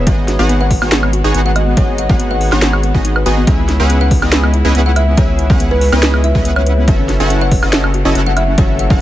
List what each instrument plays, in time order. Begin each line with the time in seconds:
Already playing: string section B2 G#3 B3, kalimba C#5
0.07 sub bass G#1, supersaw synth B3 D#4 F#4 G#4 D#5, synth arpeggio sound B3, string section F#4, kick, closed hi-hat
0.18 synth arpeggio sound B3
0.28 synth arpeggio sound F#4, snare, closed hi-hat
0.39 sub bass G#1, supersaw synth B3 D#4 F#4 G#4 F#5, synth arpeggio sound B3
0.49 synth arpeggio sound B3, closed hi-hat
0.61 synth arpeggio sound B4, kalimba F#5
0.71 synth arpeggio sound B4, kick, open hi-hat
0.82 sub bass G#1, supersaw synth B3 D#4 F#4 G#4 C#5, synth arpeggio sound B3, high woodblock
0.92 synth arpeggio sound B3, snare, closed hi-hat
1.03 synth arpeggio sound B3, high woodblock
1.13 synth arpeggio sound F#4, closed hi-hat
1.24 sub bass G#1, synth arpeggio sound B3, supersaw synth B3 D#4 F#4 G#4 C#5
1.34 sub bass G#1, synth arpeggio sound B3, supersaw synth B3 D#4 F#4 G#4 F#5, closed hi-hat
1.46 synth arpeggio sound B4, kalimba F#5
1.56 synth arpeggio sound B4, kalimba D#5, closed hi-hat, high woodblock
1.67 synth arpeggio sound B3
1.77 sub bass G#1, supersaw synth B3 D#4 F#4 G#4 D#5, synth arpeggio sound B3, kalimba C#5, kick, closed hi-hat
1.88 synth arpeggio sound B3
1.98 synth arpeggio sound F#4, kalimba F#5, closed hi-hat
2.09 sub bass G#1, supersaw synth B3 D#4 F#4 G#4 F#5, synth arpeggio sound B3, kick
2.20 synth arpeggio sound B3, closed hi-hat
2.31 synth arpeggio sound B4, kalimba F#5
2.41 synth arpeggio sound B4, open hi-hat
2.52 sub bass G#1, supersaw synth B3 D#4 F#4 G#4 C#5, synth arpeggio sound B3, snare, high woodblock
2.62 synth arpeggio sound B3, snare, closed hi-hat
2.73 synth arpeggio sound B3, high woodblock
2.83 synth arpeggio sound B3, closed hi-hat
2.94 sub bass G#1, supersaw synth B3 D#4 F#4 G#4 D#5, synth arpeggio sound F#4, kick
3.05 synth arpeggio sound D#4, closed hi-hat
3.16 synth arpeggio sound B4, high woodblock
3.26 sub bass G#1, supersaw synth B3 D#4 F#4 G#4 D#5, synth arpeggio sound B4, kalimba G#5, closed hi-hat
3.37 synth arpeggio sound B3
3.47 sub bass C#2, string section C#3 E4, supersaw synth C#4 E4 G#4 B4 E5, kick, closed hi-hat
3.59 synth arpeggio sound B3
3.69 synth arpeggio sound E4, snare, closed hi-hat
3.80 sub bass C#2, synth arpeggio sound B3, supersaw synth C#4 E4 G#4 B4 F#5
3.90 synth arpeggio sound B3, closed hi-hat
4.01 synth arpeggio sound B4, kalimba F#5
4.11 synth arpeggio sound B4, kick, open hi-hat
4.22 sub bass C#2, synth arpeggio sound B3, supersaw synth C#4 E4 G#4 B4 D#5, high woodblock
4.32 synth arpeggio sound B3, snare, closed hi-hat
4.44 synth arpeggio sound B3, high woodblock
4.54 synth arpeggio sound E4, closed hi-hat
4.65 sub bass C#2, synth arpeggio sound B3, supersaw synth C#4 E4 G#4 B4 D#5
4.75 sub bass C#2, synth arpeggio sound B3, supersaw synth C#4 E4 G#4 B4 F#5, closed hi-hat
4.86 synth arpeggio sound B4, kalimba F#5
4.96 synth arpeggio sound B4, kalimba E5, closed hi-hat, high woodblock
5.07 synth arpeggio sound B3
5.17 sub bass C#2, synth arpeggio sound B3, supersaw synth C#4 E4 G#4 B4 E5, kalimba C#5, kick, closed hi-hat
5.29 synth arpeggio sound B3
5.39 synth arpeggio sound E4, closed hi-hat
5.50 sub bass C#2, synth arpeggio sound B3, supersaw synth C#4 E4 G#4 B4 F#5, kick
5.60 synth arpeggio sound B3, closed hi-hat
5.71 kalimba B4, synth arpeggio sound B4
5.81 synth arpeggio sound B4, open hi-hat
5.92 sub bass C#2, synth arpeggio sound B3, supersaw synth C#4 E4 G#4 B4 D#5, high woodblock
6.03 synth arpeggio sound B3, snare, closed hi-hat
6.14 synth arpeggio sound B3, high woodblock
6.24 synth arpeggio sound E4, kalimba E5, closed hi-hat
6.35 sub bass C#2, synth arpeggio sound B3, supersaw synth C#4 E4 G#4 B4 D#5, kick
6.45 sub bass C#2, synth arpeggio sound B3, supersaw synth C#4 E4 G#4 B4 F#5, closed hi-hat
6.56 synth arpeggio sound B4, kalimba C#5, high woodblock
6.66 synth arpeggio sound B4, closed hi-hat
6.78 synth arpeggio sound B3
6.88 sub bass F#1, string section E3 F#3 A3, supersaw synth C#4 E4 F#4 A4 E5, kick, closed hi-hat
6.99 synth arpeggio sound C#4
7.09 synth arpeggio sound F#4, snare, closed hi-hat
7.20 sub bass F#1, supersaw synth C#4 E4 F#4 A4 F#5, synth arpeggio sound C#4
7.30 synth arpeggio sound C#4, closed hi-hat
7.41 synth arpeggio sound C#5, kalimba F#5
7.52 synth arpeggio sound C#5, kick, open hi-hat
7.63 sub bass F#1, supersaw synth C#4 E4 F#4 A4 D#5, synth arpeggio sound C#4, high woodblock
7.73 synth arpeggio sound C#4, snare, closed hi-hat
7.84 synth arpeggio sound C#4, high woodblock
7.94 synth arpeggio sound F#4, closed hi-hat
8.05 sub bass F#1, supersaw synth C#4 E4 F#4 A4 D#5, synth arpeggio sound C#4
8.15 sub bass F#1, synth arpeggio sound C#4, supersaw synth C#4 E4 F#4 A4 F#5, closed hi-hat
8.26 synth arpeggio sound C#5, kalimba F#5
8.37 synth arpeggio sound C#5, kalimba E5, closed hi-hat, high woodblock
8.48 synth arpeggio sound C#4
8.58 sub bass F#1, synth arpeggio sound C#4, supersaw synth C#4 E4 F#4 A4 E5, kalimba C#5, kick, closed hi-hat
8.69 synth arpeggio sound C#4
8.79 synth arpeggio sound F#4, kalimba F#5, closed hi-hat
8.90 sub bass F#1, supersaw synth C#4 E4 F#4 A4 F#5, synth arpeggio sound C#4, kick